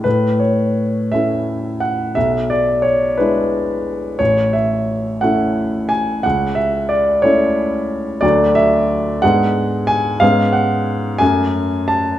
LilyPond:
<<
  \new Staff \with { instrumentName = "Grand piano" } { \time 6/8 \key a \major \tempo 4. = 59 b'8 cis''4 e''4 fis''8 | e''8 d''8 cis''8 b'4. | cis''8 e''4 fis''4 gis''8 | fis''8 e''8 d''8 cis''4. |
\key fis \minor d''8 e''4 fis''4 gis''8 | eis''8 fis''4 gis''4 a''8 | }
  \new Staff \with { instrumentName = "Grand piano" } { \time 6/8 \key a \major a,4. <a cis' e'>4. | b,,4. <gis d' e'>4. | a,,4. <a cis' e'>4. | cis,4. <a cis' e'>4. |
\key fis \minor <d, fis a d'>4. <gis, gis b d'>4. | <gis, gis b cis'>4. <fis, a cis'>4. | }
>>